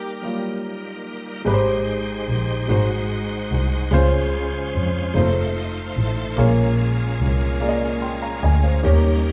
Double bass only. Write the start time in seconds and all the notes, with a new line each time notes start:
1.46 G#1
2.28 A#1
2.69 G#1
3.51 C2
3.91 C#2
4.74 F2
5.15 F1
5.97 A1
6.38 A#1
7.20 C2
8.43 D2
8.85 D#2